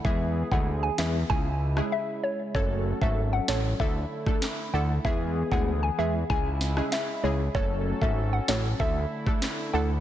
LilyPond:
<<
  \new Staff \with { instrumentName = "Synth pluck" } { \time 4/4 \key fis \minor \tempo 4 = 96 e''8 r16 fis''16 r16 gis''16 e''16 r16 gis''8. r16 e''16 r16 cis''16 r16 | cis''8 r16 e''16 r16 fis''16 cis''16 r16 e''8. r8. fis''16 r16 | e''8 r16 fis''16 r16 gis''16 e''16 r16 gis''8. r16 e''16 r16 cis''16 r16 | cis''8 r16 e''16 r16 fis''16 cis''16 r16 e''8. r8. fis''16 r16 | }
  \new Staff \with { instrumentName = "Synth stab" } { \time 4/4 \key fis \minor <gis b e' gis'>8. <gis b e' gis'>16 r8 <gis b e' gis'>16 r16 <gis cis' e' gis'>16 r8 <gis cis' e' gis'>16 r4 | <a cis' fis' a'>8. <a cis' fis' a'>16 r8 <a cis' fis' a'>16 r16 <a d' e' a'>16 r8 <a d' e' a'>16 r8 <a d' e' a'>16 r16 | <gis b e' gis'>8. <gis b e' gis'>16 r8 <gis b e' gis'>16 r16 <gis cis' e' gis'>16 r8 <gis cis' e' gis'>16 r8 <gis cis' e' gis'>16 r16 | <a cis' fis' a'>8. <a cis' fis' a'>16 r8 <a cis' fis' a'>16 r16 <a d' e' a'>16 r8 <a d' e' a'>16 r8 <a d' e' a'>16 r16 | }
  \new Staff \with { instrumentName = "Analog synth pad" } { \time 4/4 \key fis \minor <e b gis'>2 <cis gis e'>2 | <fis cis' a'>2 <d a e'>2 | <e b gis'>2 <cis gis e'>2 | <fis cis' a'>2 <d a e'>2 | }
  \new Staff \with { instrumentName = "Analog synth bass" } { \clef bass \time 4/4 \key fis \minor e,8. d,8. e,8 cis,4 r4 | fis,,8. gis,,8. a,,8 d,8 r4 d,8 | e,8. d,8. e,8 cis,4 r8 cis,8 | fis,,8. gis,,8. a,,8 d,8 r4 d,8 | }
  \new DrumStaff \with { instrumentName = "Drums" } \drummode { \time 4/4 bd8. bd16 r8 <hc sn>8 bd8. ss16 r4 | bd8. bd16 r8 <hc sn>8 bd8. <bd ss>16 <hc sn>4 | bd8. bd16 r4 bd8 sn16 ss16 <hc sn>4 | bd8. bd16 r8 <hc sn>8 bd8. <bd ss>16 <hc sn>4 | }
>>